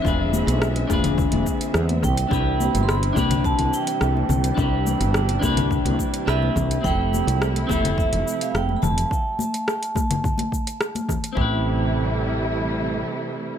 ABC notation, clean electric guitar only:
X:1
M:4/4
L:1/8
Q:1/4=106
K:Am
V:1 name="Clean electric guitar"
[DF^GB]3 [DFGB]3 z2 | [DEGB]3 [DEGB]4- [DEGB] | [DEGB]3 [DEGB]3 [DEGB]2 | [CEGA]3 [CEGA]4- [CEGA] |
z8 | [CEGB]8 |]